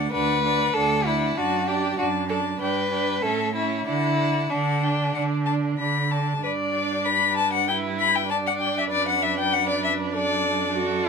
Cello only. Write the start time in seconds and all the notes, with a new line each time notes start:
0.12 D2
0.74 D2
1.37 F#2
1.98 F#2
2.60 G2
3.23 A2
3.87 D3
4.50 D3
5.15 D3
5.79 D3
6.43 G2
8.92 F#2